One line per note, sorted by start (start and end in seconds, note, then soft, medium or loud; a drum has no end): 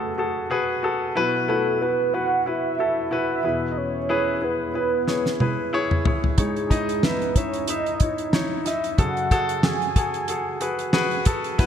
0.00 1.12 F#2 soft
0.00 1.12 C#3 soft
0.00 0.18 F#4 medium
0.00 0.18 G#4 medium
0.00 0.19 A4 medium
0.00 0.47 A4 medium
0.00 0.51 B4 medium
0.18 0.42 F#4 medium
0.18 0.42 G#4 medium
0.18 0.43 A4 medium
0.50 0.74 F#4 medium
0.50 0.75 G#4 medium
0.50 0.75 B4 medium
0.83 1.07 F#4 medium
0.83 1.07 G#4 medium
0.83 1.08 A4 medium
1.15 3.40 B2 medium
1.15 3.40 F#3 medium
1.15 1.40 E4 medium
1.15 1.40 F#4 medium
1.15 1.40 B4 loud
1.48 1.73 E4 medium
1.48 1.73 F#4 medium
1.48 1.79 A4 medium
1.48 1.73 B4 medium
1.81 2.05 E4 medium
1.81 2.06 F#4 medium
1.81 2.15 B4 medium
1.81 2.06 B4 medium
2.13 2.38 E4 medium
2.13 2.38 F#4 medium
2.13 2.38 B4 medium
2.13 2.48 F#5 medium
2.46 2.70 E4 medium
2.46 2.71 F#4 medium
2.46 2.71 B4 medium
2.46 3.11 E5 loud
2.79 3.03 E4 medium
2.79 3.03 F#4 medium
2.79 3.04 A4 medium
3.11 3.35 E4 medium
3.11 3.36 F#4 medium
3.11 3.36 B4 medium
3.11 3.73 E5 loud
3.43 6.01 E2 soft
3.43 6.01 B2 soft
3.43 3.98 E4 medium
3.43 3.98 G#4 medium
3.43 3.98 B4 medium
3.71 3.79 D#5 medium
3.78 4.43 C#5 medium
4.09 4.33 E4 medium
4.09 4.34 G#4 medium
4.09 4.34 B4 medium
4.41 4.66 E4 medium
4.41 4.66 G#4 soft
4.41 4.66 B4 medium
4.41 6.02 B4 medium
4.74 4.99 E4 medium
4.74 4.99 G#4 medium
4.74 4.99 B4 medium
5.07 5.31 E4 medium
5.07 5.32 G#4 medium
5.07 5.32 C#5 medium
5.07 snare soft
5.26 snare soft
5.40 5.64 E4 medium
5.40 5.64 G#4 medium
5.40 5.65 B4 medium
5.40 high tom medium
5.73 5.97 E4 medium
5.73 5.97 G#4 medium
5.73 5.97 C#5 medium
5.91 mid tom medium
6.05 6.30 E4 medium
6.05 6.30 G#4 medium
6.05 6.30 C#5 medium
6.05 floor tom medium
6.24 floor tom medium
6.38 8.95 C#2 soft
6.38 8.95 G#2 soft
6.38 6.62 D#4 medium
6.38 6.62 E4 medium
6.38 7.05 G#4 medium
6.38 6.62 C#5 medium
6.38 kick medium
6.38 closed hi-hat medium
6.56 closed hi-hat soft
6.70 6.94 D#4 medium
6.70 6.95 E4 medium
6.70 6.95 D#5 medium
6.70 kick medium
6.70 closed hi-hat medium
6.89 closed hi-hat soft
7.03 7.27 D#4 medium
7.03 7.28 E4 soft
7.03 7.38 B4 medium
7.03 7.28 E5 medium
7.03 snare medium
7.22 closed hi-hat soft
7.36 7.60 D#4 medium
7.36 7.60 E4 medium
7.36 7.71 C#5 medium
7.36 7.61 E5 medium
7.36 kick medium
7.36 closed hi-hat medium
7.53 closed hi-hat soft
7.68 7.93 D#4 medium
7.68 7.93 E4 medium
7.68 8.34 D#5 medium
7.68 7.93 E5 medium
7.68 closed hi-hat medium
7.86 closed hi-hat soft
8.00 8.25 D#4 medium
8.00 8.25 E4 medium
8.00 8.26 C#5 medium
8.00 kick medium
8.00 closed hi-hat medium
8.18 closed hi-hat soft
8.33 8.57 D#4 medium
8.33 8.58 E4 medium
8.33 8.58 C#5 medium
8.33 snare medium
8.65 8.90 D#4 medium
8.65 8.90 E4 medium
8.65 8.90 D#5 medium
8.65 9.01 E5 medium
8.65 snare soft
8.65 closed hi-hat medium
8.84 closed hi-hat soft
8.98 11.55 F#2 soft
8.98 11.55 C#3 medium
8.98 9.22 F#4 medium
8.98 9.23 G#4 medium
8.98 9.23 A4 medium
8.98 9.65 F#5 medium
8.98 kick medium
8.98 closed hi-hat medium
9.17 closed hi-hat soft
9.31 9.55 F#4 medium
9.31 9.55 G#4 medium
9.31 9.56 A4 medium
9.31 kick medium
9.31 closed hi-hat medium
9.49 closed hi-hat soft
9.63 9.88 F#4 medium
9.63 9.88 G#4 medium
9.63 9.88 A4 medium
9.63 10.94 G#5 medium
9.63 snare medium
9.82 closed hi-hat soft
9.96 10.20 F#4 medium
9.96 10.21 G#4 medium
9.96 10.21 A4 medium
9.96 kick medium
9.96 closed hi-hat medium
10.14 closed hi-hat soft
10.28 10.53 F#4 medium
10.28 10.53 G#4 medium
10.28 10.54 A4 medium
10.28 closed hi-hat medium
10.61 10.85 F#4 medium
10.61 10.86 G#4 medium
10.61 10.86 B4 medium
10.61 closed hi-hat medium
10.79 closed hi-hat soft
10.93 11.18 F#4 medium
10.93 11.18 G#4 medium
10.93 11.18 B4 loud
10.93 snare medium
11.11 closed hi-hat soft
11.25 11.50 F#4 medium
11.25 11.51 G#4 medium
11.25 11.51 A4 medium
11.25 kick medium
11.25 closed hi-hat medium
11.44 closed hi-hat soft
11.58 11.66 B2 medium
11.58 11.66 F#3 medium
11.58 11.66 E4 medium
11.58 11.66 F#4 medium
11.58 11.66 B4 loud
11.58 kick medium
11.58 closed hi-hat medium